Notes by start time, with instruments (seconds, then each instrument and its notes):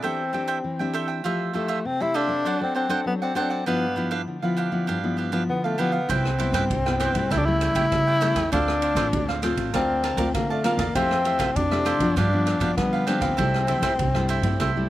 0.02 nylon-string guitar E3 C4 D4 G4, tenor saxophone C4, cavaquinho A4 C5 E5 G5
0.33 nylon-string guitar C4 D4 G4, cavaquinho A4 C5 E5 G5
0.47 cavaquinho A4 C5 E5 G5
0.64 nylon-string guitar E3
0.79 nylon-string guitar C4 D4 G4, cavaquinho C5 E5 G5
0.93 cavaquinho A4 C5 E5 G5
1.08 cavaquinho C5 E5 G5
1.24 nylon-string guitar F3 A3 E4 G4, cavaquinho F4 A4 C5 E5
1.53 nylon-string guitar A3 E4 G4, tenor saxophone A3, cavaquinho F4 A4 C5 E5
1.68 cavaquinho F4 A4 C5 E5
1.85 nylon-string guitar C3, tenor saxophone C4
2.00 nylon-string guitar A3 E4 G4, tenor saxophone E4, cavaquinho A4 C5 E5
2.14 tenor saxophone D4, cavaquinho F4 A4 C5 E5
2.28 nylon-string guitar C4 D4 A4
2.45 nylon-string guitar F#3, cavaquinho D4 C5 D5 F#5
2.60 nylon-string guitar C4 D4 A4, tenor saxophone C4
2.75 tenor saxophone C4, cavaquinho D4 C5 D5 F#5
2.89 nylon-string guitar C4 D4 A4, cavaquinho D4 C5 D5 F#5
3.06 nylon-string guitar F#3, tenor saxophone B3
3.22 tenor saxophone C4, cavaquinho C5 D5 F#5
3.35 nylon-string guitar C4 D4 A4, tenor saxophone C4, cavaquinho D4 C5 D5 F#5
3.50 cavaquinho C5 D5 F#5
3.66 nylon-string guitar G2 F3 B3 E4, tenor saxophone B3, cavaquinho D4 G4 B4 F5
3.96 nylon-string guitar F3 B3 E4, cavaquinho D4 G4 B4 F5
4.11 cavaquinho D4 G4 B4 F5
4.27 nylon-string guitar D3
4.42 nylon-string guitar F3 B3 E4, cavaquinho G4 B4 F5
4.57 cavaquinho D4 G4 B4 F5
4.72 nylon-string guitar F3 B3 E4
4.87 nylon-string guitar G2, cavaquinho D4 G4 B4 F5
5.04 nylon-string guitar F3 B3 E4
5.17 cavaquinho D4 G4 B4 F5
5.32 nylon-string guitar F3 B3 E4, cavaquinho D4 G4 B4 F5
5.49 nylon-string guitar D3, tenor saxophone B3
5.64 tenor saxophone A3, cavaquinho G4 B4 F5
5.78 nylon-string guitar F3 B3 E4, tenor saxophone B3, cavaquinho D4 G4 B4 F5
5.92 cavaquinho G4 B4 F5
6.09 upright bass C2, nylon-string guitar C3 G3 B3 E4, tenor saxophone C4, cavaquinho E4 B4 C5 G5, kick, ride
6.25 cross-stick
6.38 nylon-string guitar G3 B3 E4, cavaquinho E4 B4 C5 G5, ride
6.52 upright bass G2, cavaquinho E4 B4 C5 G5, kick, cross-stick, ride
6.70 upright bass C2, nylon-string guitar G2, kick, ride
6.86 nylon-string guitar G3 B3 E4, cavaquinho B4 C5 G5, cross-stick
7.00 cavaquinho E4 B4 C5 G5, cross-stick, ride
7.13 upright bass B1, nylon-string guitar G3 A3 E4, kick, ride
7.30 upright bass C#2, nylon-string guitar C#3, cavaquinho E4 A4 C#5 G5, tenor saxophone E4, kick, cross-stick, ride
7.38 tenor saxophone D4
7.46 nylon-string guitar G3 A3 E4, tenor saxophone E4
7.61 cavaquinho E4 A4 C#5 G5, cross-stick, ride
7.74 upright bass C#2, nylon-string guitar G3 A3 E4, cavaquinho E4 A4 C#5 G5, kick, ride
7.92 upright bass C#3, nylon-string guitar C#3, kick, cross-stick, ride
8.07 cavaquinho A4 C#5 G5
8.21 nylon-string guitar G3 A3 E4, cavaquinho E4 A4 C#5 G5, cross-stick, ride
8.35 upright bass E2, cavaquinho A4 C#5 G5, kick, cross-stick, ride
8.52 upright bass D2, nylon-string guitar D3 A3 C4 F4, cavaquinho D4 A4 C5 F5, tenor saxophone D4, kick, ride
8.68 cross-stick
8.82 cavaquinho D4 A4 C5 F5, ride
8.95 upright bass A1, nylon-string guitar A3 C4 F4, cavaquinho D4 A4 C5 F5, kick, cross-stick, ride
9.13 upright bass D2, nylon-string guitar A2, kick, ride
9.28 cavaquinho A4 C5 F5, cross-stick
9.42 nylon-string guitar A3 C4 F4, cavaquinho D4 A4 C5 F5, cross-stick, ride
9.56 upright bass A1, kick, ride
9.73 upright bass D2, nylon-string guitar D3 A3 C4 F4, tenor saxophone C4, cavaquinho A#4 D5 F5 A5, kick, cross-stick, ride
10.04 cavaquinho A#4 D5 F5 A5, cross-stick, ride
10.17 upright bass D2, nylon-string guitar A3 C4 F4, cavaquinho A#4 D5 F5 A5, kick, ride
10.34 nylon-string guitar D3, upright bass D3, tenor saxophone A#3, kick, cross-stick, ride
10.50 tenor saxophone A3, cavaquinho D5 F5 A5
10.64 nylon-string guitar A3 C4 F4, tenor saxophone A#3, cavaquinho A#4 D5 F5 A5, cross-stick, ride
10.77 upright bass E2, cavaquinho D5 F5 A5, kick, cross-stick, ride
10.95 upright bass F2, nylon-string guitar F3 A3 E4 G4, tenor saxophone C4, cavaquinho F4 A4 C5 E5, kick, ride
11.11 cross-stick
11.24 nylon-string guitar A3 E4 G4, cavaquinho F4 A4 C5 E5, ride
11.38 upright bass C2, cavaquinho F4 A4 C5 E5, kick, cross-stick, ride
11.56 upright bass F2, nylon-string guitar C3, tenor saxophone D4, kick, ride
11.71 nylon-string guitar A3 E4 G4, cavaquinho A4 C5 E5, cross-stick
11.85 cavaquinho F4 A4 C5 E5, cross-stick, ride
11.99 upright bass F#2, nylon-string guitar F3 B3 D4, kick, ride
12.16 upright bass G2, nylon-string guitar G2, cavaquinho D4 G4 B4 F5, tenor saxophone D4, kick, cross-stick, ride
12.33 nylon-string guitar F3 B3 D4
12.46 cavaquinho D4 G4 B4 F5, cross-stick, ride
12.59 upright bass G2, nylon-string guitar F3 B3 D4, cavaquinho D4 G4 B4 F5, kick, ride
12.77 nylon-string guitar D3, upright bass G3, tenor saxophone B3, kick, cross-stick, ride
12.93 cavaquinho G4 B4 F5
13.07 nylon-string guitar F3 B3 D4, tenor saxophone C4, cavaquinho D4 G4 B4 F5, cross-stick, ride
13.20 upright bass D2, cavaquinho G4 B4 F5, kick, cross-stick, ride
13.37 upright bass C2, nylon-string guitar C3 G3 A3 E4, cavaquinho E4 A4 C5 E5, kick, ride
13.54 cross-stick
13.67 nylon-string guitar G3 A3 E4, cavaquinho E4 A4 C5 E5, ride
13.81 upright bass G2, cavaquinho E4 A4 C5 E5, kick, cross-stick, ride
13.99 upright bass C2, nylon-string guitar G2, kick, ride
14.15 nylon-string guitar G3 A3 E4, cavaquinho A4 C5 E5, cross-stick
14.28 cavaquinho E4 A4 C5 E5, ride
14.42 upright bass G2, nylon-string guitar G3 A3 E4, kick, ride
14.60 upright bass C2, nylon-string guitar C3, cavaquinho E4 A4 C5 E5, kick, cross-stick, ride
14.77 nylon-string guitar G3 A3 E4